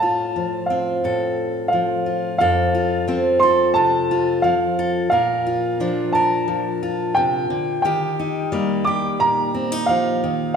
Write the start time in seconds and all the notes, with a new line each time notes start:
Already playing: A2 C4
0.00 F4 A5
0.36 F3
0.66 F5
0.70 C4
1.04 A2 A4
1.68 F5
1.73 F3
2.06 F4
2.38 F2 A4 F5
2.75 F4
3.08 F3 C4
3.39 A4 C6
3.74 C3 A5
4.11 F4
4.42 F3 F5
4.79 A4
5.10 A#2 A#4 F5
5.46 F4
5.80 F3 D4
6.13 A#4 A5
6.48 F3
6.83 F4
7.15 C3 G5
7.50 D3
7.82 D#3 G4 G5
8.19 D#4
8.52 G3 A#3
8.85 G4 D6
9.20 A#2 A#5
9.54 C4
9.72 D#4
9.86 F3 F5
10.24 D#3